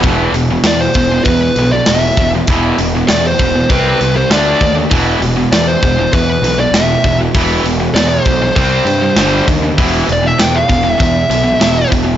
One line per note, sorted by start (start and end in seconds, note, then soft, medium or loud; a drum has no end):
0.03 0.27 E1 medium
0.03 0.34 E2 medium
0.03 0.33 B2 medium
0.03 kick loud
0.03 open hi-hat medium
0.07 0.34 E3 medium
0.32 0.56 E1 medium
0.32 0.50 E2 medium
0.32 0.49 B2 medium
0.32 open hi-hat medium
0.51 0.64 E2 medium
0.51 0.65 B2 medium
0.64 0.87 E2 medium
0.64 0.93 E2 medium
0.64 0.93 B2 medium
0.64 0.81 D5 medium
0.64 snare loud
0.64 open hi-hat medium
0.81 1.24 C5 medium
0.94 1.19 E1 medium
0.94 1.11 E2 medium
0.94 1.11 B2 medium
0.94 kick medium
0.94 open hi-hat soft
1.12 1.26 E2 medium
1.12 1.27 B2 medium
1.24 1.49 E2 medium
1.24 1.54 E2 medium
1.24 1.54 B2 medium
1.24 1.72 B4 medium
1.24 kick loud
1.24 open hi-hat medium
1.56 1.79 B1 medium
1.56 1.73 E2 medium
1.56 1.72 B2 medium
1.56 open hi-hat medium
1.72 1.88 E2 medium
1.72 1.87 B2 medium
1.72 1.88 D5 medium
1.86 2.10 E1 medium
1.86 2.15 E2 medium
1.86 2.16 B2 medium
1.86 2.29 E5 medium
1.86 snare loud
1.86 open hi-hat medium
2.17 2.40 E1 medium
2.17 2.34 E2 medium
2.17 2.34 B2 medium
2.17 kick medium
2.17 open hi-hat medium
2.35 2.48 E2 medium
2.35 2.49 B2 medium
2.47 2.71 E1 medium
2.47 2.77 E2 medium
2.47 2.78 B2 medium
2.47 2.78 E3 medium
2.47 kick loud
2.47 open hi-hat medium
2.78 3.01 E1 medium
2.78 2.95 E2 medium
2.78 2.94 B2 medium
2.78 open hi-hat medium
2.95 3.09 E2 medium
2.95 3.09 B2 medium
3.08 3.32 E2 medium
3.08 3.37 E2 medium
3.08 3.37 B2 medium
3.08 3.24 D5 loud
3.08 snare loud
3.08 open hi-hat medium
3.27 3.71 C5 medium
3.39 3.63 E1 medium
3.39 3.54 E2 medium
3.39 3.54 B2 medium
3.39 kick medium
3.39 open hi-hat medium
3.55 3.70 E2 medium
3.55 3.69 B2 medium
3.69 3.93 C2 medium
3.69 3.98 C3 medium
3.69 3.99 G3 medium
3.69 3.99 C4 medium
3.69 4.13 B4 medium
3.69 kick loud
3.69 open hi-hat medium
4.01 4.24 C2 medium
4.01 4.15 C3 medium
4.01 4.15 G3 medium
4.01 open hi-hat medium
4.16 4.31 C3 medium
4.16 4.31 G3 medium
4.16 4.32 C5 medium
4.30 4.53 D2 medium
4.30 4.59 D3 medium
4.30 4.60 A3 medium
4.30 4.60 D4 medium
4.30 4.74 D5 medium
4.30 snare loud
4.30 open hi-hat medium
4.61 4.84 D#2 medium
4.61 4.75 D3 medium
4.61 4.75 A3 medium
4.61 kick medium
4.61 open hi-hat medium
4.76 4.90 D3 medium
4.76 4.91 A3 medium
4.91 5.15 E1 loud
4.91 5.20 E2 medium
4.91 5.20 B2 loud
4.91 5.20 E3 loud
4.91 kick loud
4.91 open hi-hat medium
5.21 5.44 E1 medium
5.21 5.36 E2 medium
5.21 5.36 B2 medium
5.21 open hi-hat soft
5.37 5.52 E2 medium
5.37 5.52 B2 medium
5.52 5.75 E2 medium
5.52 5.80 E2 medium
5.52 5.80 B2 medium
5.52 5.68 D5 medium
5.52 snare loud
5.52 open hi-hat medium
5.68 6.13 C5 medium
5.83 6.06 E1 medium
5.83 5.98 E2 medium
5.83 5.97 B2 medium
5.83 kick medium
5.83 open hi-hat soft
5.98 6.13 E2 medium
5.98 6.13 B2 medium
6.13 6.36 E2 medium
6.13 6.41 E2 medium
6.13 6.41 B2 medium
6.13 6.60 B4 medium
6.13 kick loud
6.13 open hi-hat medium
6.42 6.66 B1 medium
6.42 6.57 E2 medium
6.42 6.57 B2 medium
6.42 open hi-hat medium
6.58 6.74 E2 medium
6.58 6.74 B2 medium
6.58 6.75 D5 medium
6.72 6.96 E1 medium
6.72 7.02 E2 medium
6.72 7.02 B2 medium
6.72 7.17 E5 medium
6.72 snare loud
6.72 open hi-hat medium
7.04 7.28 E1 medium
7.04 7.20 E2 medium
7.04 7.20 B2 medium
7.04 kick medium
7.04 open hi-hat medium
7.21 7.34 E2 medium
7.21 7.34 B2 medium
7.35 7.58 E1 medium
7.35 7.64 E2 medium
7.35 7.64 B2 loud
7.35 7.64 E3 loud
7.35 kick loud
7.35 open hi-hat medium
7.64 7.88 E1 medium
7.64 7.79 E2 medium
7.64 7.79 B2 medium
7.64 open hi-hat medium
7.80 7.94 E2 medium
7.80 7.95 B2 medium
7.95 8.18 E2 medium
7.95 8.23 E2 medium
7.95 8.24 B2 medium
7.95 8.08 D5 loud
7.95 snare loud
7.95 open hi-hat medium
8.08 8.55 C5 medium
8.25 8.50 B1 medium
8.25 8.41 E2 medium
8.25 8.40 B2 medium
8.25 kick medium
8.25 open hi-hat medium
8.41 8.57 E2 medium
8.41 8.55 B2 medium
8.56 8.80 C2 medium
8.56 8.85 C3 medium
8.56 8.85 G3 medium
8.56 8.86 C4 medium
8.56 9.44 C5 medium
8.56 kick loud
8.56 open hi-hat medium
8.85 9.09 G2 medium
8.85 9.01 C3 medium
8.85 9.01 G3 medium
8.85 open hi-hat medium
9.02 9.18 C3 medium
9.02 9.17 G3 medium
9.17 9.40 G1 medium
9.17 9.46 G2 medium
9.17 9.47 D3 medium
9.17 9.47 G3 medium
9.17 snare loud
9.17 open hi-hat medium
9.48 9.71 D#2 medium
9.48 9.62 G2 medium
9.48 9.61 D3 medium
9.48 kick medium
9.48 open hi-hat medium
9.62 9.77 G2 medium
9.62 9.77 D3 medium
9.77 10.02 E1 medium
9.77 10.06 E2 medium
9.77 10.05 B2 medium
9.77 10.07 E3 medium
9.77 kick loud
9.77 open hi-hat medium
10.06 10.32 E1 medium
10.06 10.21 E2 medium
10.06 10.22 B2 medium
10.06 open hi-hat soft
10.13 10.26 D5 medium
10.23 10.37 E2 medium
10.23 10.37 B2 medium
10.23 10.41 E5 medium
10.38 10.66 E2 medium
10.38 10.62 E2 medium
10.38 10.66 B2 medium
10.38 10.56 G5 loud
10.38 snare loud
10.38 open hi-hat medium
10.56 10.91 F5 medium
10.69 10.93 E1 medium
10.69 10.83 E2 medium
10.69 10.82 B2 medium
10.69 kick medium
10.69 open hi-hat medium
10.84 10.97 E2 medium
10.84 10.97 B2 medium
10.91 11.02 E5 medium
10.98 11.27 E2 medium
10.98 11.24 E2 medium
10.98 11.27 B2 medium
10.98 kick loud
10.98 open hi-hat medium
11.02 11.89 E5 medium
11.30 11.53 B1 medium
11.30 11.43 E2 medium
11.30 11.42 B2 medium
11.30 open hi-hat medium
11.43 11.58 E2 medium
11.43 11.59 B2 medium
11.59 11.84 E1 medium
11.59 11.88 E2 medium
11.59 11.88 B2 medium
11.59 snare loud
11.59 open hi-hat medium
11.91 12.15 E1 medium
11.91 12.04 E2 medium
11.91 12.04 B2 medium
11.91 kick medium
11.91 open hi-hat soft
12.05 12.17 E2 medium
12.05 12.17 B2 medium